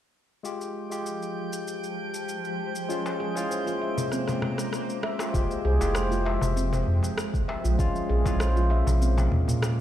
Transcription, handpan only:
2.89 3.05 F4 medium
3.20 3.29 G#4 medium
3.36 3.44 E4 medium
3.51 3.66 C5 medium
3.67 3.80 F4 medium
3.82 4.11 E5 medium
4.12 4.27 C4 medium
5.04 5.18 E5 medium
5.20 5.33 F4 medium
5.34 5.50 F4 medium
5.65 5.74 G#4 medium
5.81 5.89 E4 medium
5.95 6.11 C5 medium
6.11 6.24 F4 medium
6.25 6.55 E5 medium
6.56 6.72 C4 medium
7.48 7.63 E5 medium
7.64 7.78 F4 medium
7.79 7.94 F4 medium
8.09 8.19 G#4 medium
8.25 8.34 E4 medium
8.40 8.55 C5 medium
8.56 8.69 F4 medium
8.71 9.00 E5 medium
9.01 9.17 C4 medium

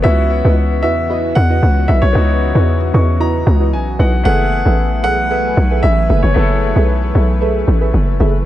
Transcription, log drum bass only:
0.05 0.42 C#2 loud
0.45 0.85 C#2 loud
0.84 1.33 E2 medium
1.36 1.61 E2 medium
1.63 1.87 C#2 medium
1.89 2.02 B1 loud
2.02 2.14 B1 medium
2.15 2.53 C#2 loud
2.55 2.92 E2 medium
2.94 3.44 E2 medium
3.47 3.75 C#2 loud
3.73 3.98 B1 medium
3.99 4.24 B1 loud
4.25 4.63 F#1 loud
4.66 5.06 A1 medium
5.05 5.54 B1 medium
5.57 5.82 B1 loud
5.83 6.08 A1 loud
6.10 6.23 F#1 medium
6.23 6.35 F#1 medium
6.36 6.74 F#1 loud
6.76 7.13 B1 medium
7.15 7.65 B1 medium
7.68 7.92 A1 medium
7.94 8.19 F#1 medium
8.20 8.45 F#1 loud

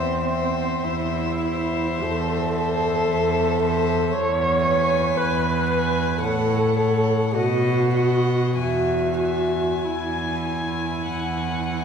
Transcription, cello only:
0.00 0.71 E2 soft
0.84 1.88 E2 soft
2.01 2.97 E2 soft
3.09 4.01 E2 medium
4.13 5.05 E2 medium
5.17 6.10 E2 soft
6.23 7.21 A2 medium
7.35 8.43 B2 medium
8.58 9.69 E2 soft
9.84 10.94 E2 soft
11.10 11.85 E2 soft

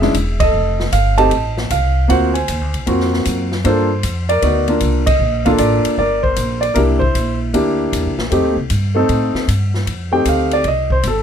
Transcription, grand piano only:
0.00 0.13 G#3 medium
0.00 0.13 C#4 medium
0.00 0.14 D4 soft
0.00 0.14 E4 medium
0.00 0.36 G#4 medium
0.00 0.41 E5 loud
0.40 1.15 A4 medium
0.40 0.88 D#5 loud
0.93 1.19 F5 medium
1.18 1.30 A3 medium
1.18 1.30 C4 medium
1.18 1.30 D#4 medium
1.18 1.30 G4 medium
1.18 1.92 D#5 medium
1.18 1.71 A5 loud
1.71 2.07 F5 medium
2.08 2.32 A#3 medium
2.08 2.32 C4 medium
2.08 2.32 F4 medium
2.08 2.32 F#4 medium
2.08 2.34 C5 medium
2.08 2.36 F#5 medium
2.34 3.09 C5 medium
2.34 3.08 G#5 medium
2.87 3.46 A#3 medium
2.87 3.46 C4 medium
2.87 3.46 F4 medium
2.87 3.47 F#4 medium
3.64 3.88 A#3 medium
3.64 3.88 D4 medium
3.64 3.88 F4 medium
3.64 3.88 A4 medium
3.64 4.32 C5 medium
4.29 4.43 A#4 medium
4.29 4.77 D5 medium
4.42 4.65 B3 medium
4.42 4.66 D#4 soft
4.42 4.66 F#4 soft
4.42 4.66 A#4 medium
4.68 5.02 A#3 soft
4.68 5.02 D4 soft
4.68 5.02 F4 soft
4.68 5.03 A#4 medium
5.06 5.43 D#5 loud
5.46 5.95 A#3 medium
5.46 5.95 D4 medium
5.46 5.95 F4 medium
5.46 5.96 A4 medium
5.46 5.51 F5 medium
5.59 5.95 D5 medium
5.99 6.73 A#4 medium
5.99 6.22 D5 medium
6.23 6.63 C5 medium
6.61 6.75 D5 medium
6.74 6.99 A#3 medium
6.74 6.99 D4 medium
6.74 7.50 E4 medium
6.74 7.00 G4 medium
6.74 6.80 A#4 medium
6.99 7.36 C5 medium
7.54 8.13 A#3 medium
7.54 8.13 D4 medium
7.54 8.13 E4 soft
7.54 8.14 G4 medium
8.31 8.54 A3 medium
8.31 8.54 C4 medium
8.31 8.55 D#4 medium
8.31 8.55 G4 medium
8.95 9.45 A3 medium
8.95 9.45 C4 medium
8.95 9.45 D#4 medium
8.95 9.45 A4 medium
10.12 10.61 A3 medium
10.12 10.62 C4 medium
10.12 10.62 D#4 medium
10.12 10.62 G4 medium
10.12 10.25 G5 medium
10.29 10.52 F5 medium
10.53 10.65 D5 medium
10.68 10.91 D#5 medium
10.92 11.04 C5 medium
11.07 11.23 A4 medium

